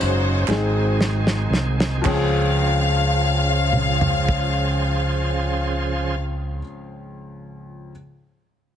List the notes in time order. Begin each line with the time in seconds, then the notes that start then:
Already playing: G#2 C#3 G#3 C#4 D#4 F#4 G#4 C5 F5
0.01 F#1, closed hi-hat
0.48 G#1 G#2 D#3 G#3 C4 D#4 G#4, snare, clap
1.01 snare
1.27 snare
1.50 C2, snare
1.80 snare
2.02 C#2 C#3 F3 C4 C#4 G#4 C5, kick, clap
2.06 C#2 G#4 F5, crash
3.73 mid tom
4.01 floor tom
4.29 kick